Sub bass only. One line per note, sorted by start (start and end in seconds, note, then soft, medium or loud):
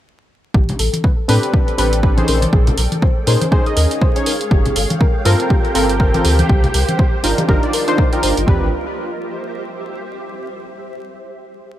0.54 0.72 A1 medium
0.79 0.88 A1 medium
1.29 1.38 A2 medium
1.78 2.22 A1 medium
2.28 2.45 A#1 medium
2.53 2.70 A#1 medium
2.78 2.87 A#1 medium
3.27 3.36 A#2 medium
3.77 3.86 D#2 loud
4.51 4.69 G1 medium
4.76 4.85 G1 medium
5.25 5.35 G2 medium
5.75 6.19 G1 medium
6.25 6.42 D2 medium
6.49 6.67 C2 loud
6.74 6.84 C2 medium
7.24 7.33 G1 medium
7.49 7.58 G1 loud
8.23 8.32 G1 medium
8.37 8.44 G1 medium
8.48 8.71 A1 medium